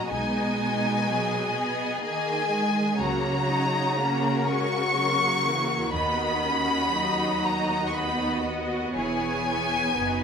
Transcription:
Already playing: viola section F#3, violin section A#5
0.10 double bass section B1, cello section B2, viola section G#3 B3, violin section D#4 D#5 G#5
0.59 violin section D#4
1.08 viola section F#3, violin section G#4
1.55 viola section B3
2.02 cello section D#3, viola section A#3, violin section G#5
2.50 viola section G#3
2.98 double bass section C#2, cello section C#3, viola section F#3 A#3, violin section F#4 C#5 A#5
3.49 viola section D#4
3.97 viola section A#3 C#4, violin section F#4 A#4
4.47 viola section G#3, violin section C#6
4.95 viola section F#3 A#3, violin section A#4
5.44 viola section E3
5.92 double bass section D#2, cello section D#2, viola section D#3 B3, violin section F#4 D#5 B5
6.42 viola section C#4
6.93 viola section F#3 D#4
7.44 violin section A#5
7.87 violin section C#6
7.95 viola section B3 D#4, violin section B5
8.46 viola section F#4
8.95 double bass section E1, cello section E2, viola section E4, violin section G#4 C#5 G#5
9.46 viola section E4
9.96 double bass section F#1, cello section F#2, viola section D#4, violin section F#4 B4

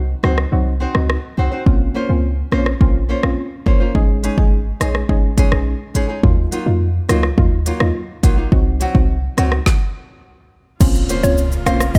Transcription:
Already playing: 808-style bass C2
0.23 808-style bass C#2, synth stab F#3 C4 D#4 F#4, nylon-string guitar C4 D#4 F#4 C5, cross-stick
0.38 cross-stick
0.52 808-style bass C2, synth stab F#3 C4 D#4 F#4
0.80 nylon-string guitar C4 D#4 F#4 C5
0.95 808-style bass C#2, synth stab F#3 C4 D#4 F#4, cross-stick
1.10 cross-stick
1.37 808-style bass C2, nylon-string guitar C4 D#4 F#4 C5
1.52 nylon-string guitar C4 D#4 F#4 C5
1.66 808-style bass A#1, synth stab A#3 C4 C#4 F4, kick
1.94 nylon-string guitar A#3 C#4 F4 C5
2.09 808-style bass C#2, synth stab A#3 C4 C#4 F4
2.52 808-style bass A#1, nylon-string guitar A#3 C#4 F4 C5, synth stab A#3 C4 C#4 F4, cross-stick
2.66 cross-stick
2.80 808-style bass A#1, synth stab A#3 C4 C#4 F4, kick
3.09 nylon-string guitar A#3 C#4 F4 C5
3.23 808-style bass A#1, synth stab A#3 C4 C#4 F4, cross-stick
3.66 808-style bass F#1, nylon-string guitar A#3 C#4 F4 C5, kick
3.80 nylon-string guitar A#3 C#4 F4 C5
3.95 808-style bass G#1, synth stab G#3 C#4 D#4 G#4, kick
4.23 nylon-string guitar G#3 C#4 D#4 G#4, closed hi-hat
4.38 808-style bass G#1, synth stab G#3 C#4 D#4 G#4, kick
4.80 808-style bass A#1, nylon-string guitar G#3 C#4 D#4 G#4, synth stab G#3 C#4 D#4 G#4, cross-stick, closed hi-hat
4.95 cross-stick
5.09 808-style bass G#1, synth stab G#3 C#4 D#4 G#4, kick
5.37 nylon-string guitar G#3 C#4 D#4 G#4, kick, closed hi-hat
5.52 808-style bass A#1, synth stab G#3 C#4 D#4 G#4, cross-stick
5.94 808-style bass G#1, nylon-string guitar G#3 C#4 D#4 G#4, closed hi-hat
6.09 nylon-string guitar G#3 C#4 D#4 G#4
6.23 808-style bass D#2, synth stab F#3 A#3 D#4 F4, kick
6.51 nylon-string guitar F#3 A#3 D#4 F4, closed hi-hat
6.66 808-style bass F2, synth stab F#3 A#3 D#4 F4
7.09 808-style bass C#2, nylon-string guitar F#3 A#3 D#4 F4, synth stab F#3 A#3 D#4 F4, cross-stick, closed hi-hat
7.23 cross-stick
7.37 808-style bass D#2, synth stab F#3 A#3 D#4 F4, kick
7.66 nylon-string guitar F#3 A#3 D#4 F4, closed hi-hat
7.80 808-style bass D#2, synth stab F#3 A#3 D#4 F4, cross-stick
8.23 808-style bass A#1, nylon-string guitar F#3 A#3 D#4 F4, kick, closed hi-hat
8.37 nylon-string guitar F#3 A#3 D#4 F4
8.52 808-style bass C2, synth stab F#3 C4 D#4 F#4, kick
8.80 nylon-string guitar F#3 C4 D#4 F#4, closed hi-hat
8.95 808-style bass C2, synth stab F#3 C4 D#4 F#4, kick
9.37 808-style bass C#2, nylon-string guitar F#3 C4 D#4 F#4, synth stab F#3 C4 D#4 F#4, cross-stick, closed hi-hat
9.52 cross-stick
9.66 kick, snare
10.80 808-style bass A#1, string section C#3 A#3 F4, synth stab A#3 C4 C#4 F4, kick, crash, impact, shaker, maracas
10.95 maracas, shaker
11.09 nylon-string guitar A#3 C#4 F4 C5, closed hi-hat, maracas, shaker
11.23 808-style bass C#2, synth stab A#3 C4 C#4 F4, synth pluck C#5, maracas, shaker
11.38 shaker, maracas
11.52 maracas, shaker
11.66 808-style bass A#1, nylon-string guitar A#3 C#4 F4 C5, synth stab A#3 C4 C#4 F4, synth pluck F5, cross-stick, closed hi-hat, maracas, shaker
11.80 cross-stick, maracas, shaker
11.95 808-style bass A#1, synth stab A#3 C4 C#4 F4, synth pluck D#5, kick, maracas, shaker

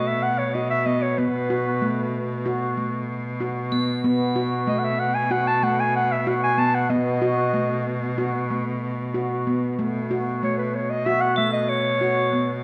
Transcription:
Already playing: cello B2, handpan A3, crotales A7
0.07 clarinet E5
0.23 clarinet F#5
0.38 clarinet C#5
0.54 handpan F#4, clarinet D#5
0.70 clarinet E5
0.86 handpan B3, clarinet D#5
1.02 clarinet C#5
1.18 handpan B3, clarinet B4
1.50 handpan F#4
1.82 handpan A3
2.46 handpan F#4
2.77 handpan A3
3.40 handpan F#4
3.72 handpan B3, crotales B7
4.04 cello B2, handpan B3
4.36 handpan F#4
4.67 handpan A3, clarinet D#5
4.78 clarinet F#5
4.84 clarinet E5
4.99 clarinet F#5
5.14 clarinet G#5
5.31 handpan F#4, clarinet F#5
5.47 clarinet A5
5.63 handpan A3, clarinet F#5
5.80 clarinet G#5
5.96 clarinet F#5
6.12 clarinet E5
6.27 handpan F#4, clarinet F#5
6.43 clarinet G#5
6.58 handpan B3, clarinet A5
6.74 clarinet F#5
6.90 handpan B3, clarinet D#5
7.22 handpan F#4
7.54 handpan A3
8.18 handpan F#4
8.50 handpan A3
9.14 handpan F#4
9.47 handpan B3
9.79 cello B2, handpan A3
10.11 handpan F#4
10.43 handpan A3, clarinet C#5
10.58 clarinet B4
10.75 clarinet C#5
10.90 clarinet D#5
11.06 handpan F#4, clarinet E5
11.21 clarinet F#5
11.36 handpan A3, clarinet E5, crotales A7
11.53 clarinet D#5
11.69 clarinet C#5
12.01 handpan F#4
12.33 handpan B3

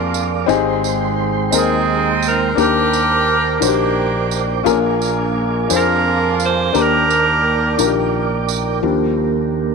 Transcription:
Already playing: fretless electric bass F2, grand piano A#2 A#3 D4 F4 G4 G#4 A#4, saxophone section D4 F4 A#4, tonewheel organ A#4 D5 F5 D6
0.14 tambourine
0.46 fretless electric bass G#1, grand piano G#2 C4 D#4 G4 G#4, tonewheel organ G#3 C5 G5 C6, tambourine
0.84 tambourine
1.51 fretless electric bass D#2, grand piano C4 D#4 A#4 G5, saxophone section C4 D#4 G#4, tambourine
2.22 saxophone section A#4, tambourine
2.55 fretless electric bass D#2, grand piano D#3 A#3 D4 G4 A#4, saxophone section D4 G4 A#4, tonewheel organ A#4 G5 D6, tambourine
2.93 tambourine
3.60 fretless electric bass A#1, grand piano D#3 D4 F#4 C5, saxophone section A#3 D4, tambourine
3.64 saxophone section G4
3.68 grand piano G4
4.31 tambourine
4.63 fretless electric bass A#1, grand piano A#2 C#4 F4 G#4 A#4, tonewheel organ F5 G#5, tambourine
4.70 grand piano D4
5.02 tambourine
5.67 fretless electric bass F2, grand piano D4 F4 G#4 C5, tambourine
5.72 saxophone section D4 F4 A#4
6.40 saxophone section C5, tambourine
6.72 fretless electric bass D#2, grand piano D#3 A#3 D4 G4 A#4, tonewheel organ A#4 D5 G5, tambourine
6.76 saxophone section D4 G4 A#4
7.10 tambourine
7.77 fretless electric bass A#1, grand piano D#3 D4 F4 A#4, tambourine
7.85 grand piano G4
8.49 tambourine
8.82 fretless electric bass D#2, tonewheel organ D#3 A#3 D4 G4 A#4, grand piano F3 G3 D4

